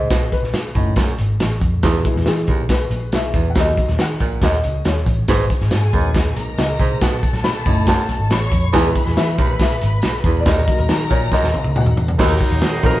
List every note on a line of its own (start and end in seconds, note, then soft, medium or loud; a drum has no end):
0.00 0.33 D#5 loud
0.10 0.29 B1 loud
0.10 0.28 B2 medium
0.10 kick loud
0.10 snare loud
0.10 closed hi-hat loud
0.10 tambourine medium
0.32 0.73 B4 medium
0.32 kick medium
0.32 closed hi-hat medium
0.32 tambourine medium
0.42 0.52 B1 medium
0.42 snare soft
0.54 0.73 B2 medium
0.54 snare loud
0.54 closed hi-hat medium
0.54 tambourine medium
0.74 0.94 F#1 medium
0.74 0.92 A2 medium
0.74 1.04 A3 soft
0.74 1.05 C#4 soft
0.74 1.05 D#4 medium
0.74 kick medium
0.74 closed hi-hat medium
0.74 tambourine medium
0.96 1.15 B1 medium
0.96 1.14 F#2 medium
0.96 kick medium
0.96 snare loud
0.96 closed hi-hat medium
0.96 tambourine medium
1.08 closed hi-hat medium
1.18 1.38 G#1 medium
1.18 closed hi-hat medium
1.18 tambourine medium
1.40 1.59 A1 medium
1.40 snare loud
1.40 closed hi-hat medium
1.40 tambourine medium
1.61 1.80 F2 medium
1.61 kick medium
1.61 closed hi-hat medium
1.61 tambourine soft
1.83 2.01 E2 loud
1.83 2.02 E2 loud
1.83 kick loud
1.83 snare loud
1.83 closed hi-hat loud
1.83 tambourine medium
2.04 2.66 G#3 medium
2.04 2.66 B3 medium
2.04 2.67 E4 medium
2.04 kick medium
2.04 closed hi-hat medium
2.04 tambourine medium
2.16 2.25 E2 loud
2.16 snare soft
2.26 2.46 E3 loud
2.26 2.72 G#4 medium
2.26 snare loud
2.26 closed hi-hat medium
2.26 tambourine loud
2.47 2.86 B1 medium
2.47 2.65 D#2 medium
2.47 kick medium
2.47 closed hi-hat medium
2.47 tambourine soft
2.69 3.15 B4 medium
2.69 kick medium
2.69 snare loud
2.69 closed hi-hat loud
2.69 tambourine medium
2.91 3.10 A#1 medium
2.91 closed hi-hat medium
2.91 tambourine medium
3.12 3.32 B1 medium
3.12 3.32 G#3 soft
3.12 3.33 B3 soft
3.12 3.33 E4 soft
3.12 3.52 E5 medium
3.12 snare loud
3.12 closed hi-hat medium
3.12 tambourine medium
3.34 3.51 E2 medium
3.34 3.53 E2 medium
3.34 kick medium
3.34 closed hi-hat medium
3.34 tambourine medium
3.50 3.57 F#5 medium
3.55 3.75 D#2 loud
3.55 3.73 D#2 medium
3.55 3.85 F#3 medium
3.55 3.85 A#3 soft
3.55 3.86 D#4 medium
3.55 3.98 D#5 loud
3.55 kick loud
3.55 snare loud
3.55 closed hi-hat loud
3.55 tambourine medium
3.77 kick medium
3.77 closed hi-hat medium
3.77 tambourine medium
3.88 3.98 D#2 medium
3.88 snare soft
3.88 closed hi-hat medium
3.99 4.18 D#3 loud
3.99 4.41 F#5 loud
3.99 snare loud
3.99 closed hi-hat medium
3.99 tambourine loud
4.20 4.40 A#1 medium
4.20 4.38 A#2 medium
4.20 kick medium
4.20 closed hi-hat medium
4.20 tambourine medium
4.42 4.61 D#2 medium
4.42 4.60 F#2 medium
4.42 4.88 D#5 loud
4.42 kick medium
4.42 snare loud
4.42 closed hi-hat medium
4.42 tambourine medium
4.53 closed hi-hat medium
4.64 4.83 C#2 medium
4.64 closed hi-hat medium
4.64 tambourine medium
4.85 5.04 D#2 medium
4.85 5.31 C#5 medium
4.85 snare loud
4.85 closed hi-hat medium
4.85 tambourine medium
5.06 5.25 A1 medium
5.06 kick medium
5.06 closed hi-hat medium
5.06 tambourine medium
5.28 5.47 G#1 loud
5.28 5.46 G#2 loud
5.28 6.34 G#4 medium
5.28 5.49 B4 medium
5.28 6.34 G#5 medium
5.28 kick loud
5.28 snare loud
5.28 closed hi-hat loud
5.28 tambourine medium
5.49 kick medium
5.49 closed hi-hat medium
5.49 tambourine medium
5.61 5.71 G#1 medium
5.61 snare soft
5.61 closed hi-hat soft
5.71 5.91 G#2 loud
5.71 snare loud
5.71 closed hi-hat medium
5.71 tambourine loud
5.93 6.31 D#2 medium
5.93 6.10 F#2 medium
5.93 6.97 G#3 medium
5.93 6.97 B3 soft
5.93 6.98 D#4 medium
5.93 kick medium
5.93 closed hi-hat medium
5.93 tambourine medium
6.15 kick medium
6.15 snare loud
6.15 closed hi-hat medium
6.15 tambourine medium
6.36 6.55 B1 medium
6.36 7.00 A#4 medium
6.36 7.00 A#5 medium
6.36 closed hi-hat medium
6.36 tambourine medium
6.58 6.77 C#2 medium
6.58 7.03 D#5 medium
6.58 snare loud
6.58 closed hi-hat medium
6.58 tambourine medium
6.80 6.98 C2 medium
6.80 6.97 G#2 medium
6.80 kick medium
6.80 closed hi-hat medium
6.80 tambourine soft
7.01 7.20 B1 loud
7.01 7.19 B2 medium
7.01 8.28 A4 medium
7.01 7.46 F#5 loud
7.01 8.28 A5 medium
7.01 kick loud
7.01 snare loud
7.01 closed hi-hat loud
7.01 tambourine medium
7.23 kick medium
7.23 closed hi-hat medium
7.23 tambourine medium
7.33 7.43 B1 loud
7.33 snare soft
7.33 closed hi-hat medium
7.44 7.63 B2 medium
7.44 7.89 B5 loud
7.44 snare loud
7.44 closed hi-hat medium
7.44 tambourine loud
7.65 7.94 F#1 medium
7.65 7.83 A2 medium
7.65 8.28 A3 medium
7.65 8.28 C#4 soft
7.65 8.28 D#4 medium
7.65 kick medium
7.65 closed hi-hat medium
7.65 tambourine medium
7.87 8.05 F#2 medium
7.87 8.32 A5 loud
7.87 kick medium
7.87 snare loud
7.87 closed hi-hat medium
7.87 tambourine medium
8.09 8.18 B1 loud
8.09 closed hi-hat medium
8.09 tambourine medium
8.20 8.29 G#1 medium
8.30 8.49 A1 medium
8.30 8.73 C#5 medium
8.30 8.76 B5 medium
8.30 8.74 C#6 medium
8.30 snare loud
8.30 closed hi-hat medium
8.30 tambourine medium
8.52 8.71 F2 medium
8.52 kick medium
8.52 closed hi-hat medium
8.52 tambourine medium
8.73 8.91 E2 loud
8.73 8.92 E2 loud
8.73 9.35 G#3 medium
8.73 9.36 B3 medium
8.73 9.36 E4 medium
8.73 10.43 B4 medium
8.73 9.19 G#5 loud
8.73 10.43 B5 medium
8.73 kick loud
8.73 snare loud
8.73 closed hi-hat loud
8.73 tambourine medium
8.95 kick loud
8.95 closed hi-hat medium
8.95 tambourine medium
9.06 9.16 E2 loud
9.06 snare soft
9.06 closed hi-hat medium
9.17 9.36 E3 loud
9.17 9.57 E5 medium
9.17 snare loud
9.17 closed hi-hat medium
9.17 tambourine medium
9.38 9.76 B1 medium
9.38 9.55 D#2 medium
9.38 kick medium
9.38 closed hi-hat medium
9.38 tambourine soft
9.59 9.81 E5 medium
9.59 kick medium
9.59 snare loud
9.59 closed hi-hat loud
9.59 tambourine medium
9.71 closed hi-hat medium
9.81 10.01 G#1 medium
9.81 closed hi-hat medium
9.81 tambourine soft
10.02 10.23 B1 medium
10.02 snare loud
10.02 closed hi-hat medium
10.02 tambourine medium
10.24 10.42 E2 medium
10.24 10.43 E2 loud
10.24 kick medium
10.24 closed hi-hat medium
10.24 tambourine medium
10.40 10.47 D5 medium
10.45 10.63 D#2 medium
10.45 10.65 D#2 loud
10.45 12.16 A#4 medium
10.45 11.14 D#5 medium
10.45 12.16 A#5 loud
10.45 kick loud
10.45 snare loud
10.45 closed hi-hat loud
10.45 tambourine medium
10.66 11.29 F#3 medium
10.66 11.29 A#3 medium
10.66 11.29 D#4 medium
10.66 kick loud
10.66 closed hi-hat medium
10.66 tambourine medium
10.79 10.89 D#2 loud
10.79 closed hi-hat medium
10.89 11.08 D#3 loud
10.89 snare loud
10.89 closed hi-hat medium
10.89 tambourine medium
11.10 11.30 A#1 loud
11.10 11.28 A#2 medium
11.10 11.33 C#5 medium
11.10 kick medium
11.10 closed hi-hat medium
11.10 tambourine medium
11.32 11.50 F#2 medium
11.32 11.77 D#5 loud
11.32 kick medium
11.32 snare medium
11.32 tambourine medium
11.43 11.53 D#2 medium
11.43 snare medium
11.54 11.63 B1 medium
11.54 high tom medium
11.54 tambourine medium
11.64 11.84 C#2 loud
11.64 high tom medium
11.76 11.96 F#3 soft
11.76 11.96 A#3 soft
11.76 11.96 D#4 medium
11.76 12.17 F#5 medium
11.76 mid tom medium
11.76 tambourine medium
11.86 11.96 D#2 medium
11.86 mid tom medium
11.97 12.16 E2 medium
11.97 floor tom medium
11.97 tambourine medium
12.08 floor tom medium
12.19 12.36 D#2 loud
12.19 12.38 D#2 loud
12.19 13.00 D#3 medium
12.19 12.81 D#3 medium
12.19 13.00 F#3 medium
12.19 13.00 A#3 medium
12.19 13.00 D#4 loud
12.19 12.59 D#4 medium
12.19 12.60 F#4 medium
12.19 12.60 A#4 medium
12.19 kick loud
12.19 snare loud
12.19 crash loud
12.19 tambourine medium
12.41 kick medium
12.41 ride medium
12.41 tambourine medium
12.51 12.61 D#2 loud
12.51 ride soft
12.62 12.81 D#3 loud
12.62 snare loud
12.62 ride medium
12.62 tambourine loud
12.83 13.00 A#1 medium
12.83 13.00 F2 medium
12.83 13.00 D#4 medium
12.83 12.89 F4 medium
12.83 13.00 A#4 medium
12.83 kick medium
12.83 ride medium
12.83 tambourine medium
12.89 13.00 F#4 medium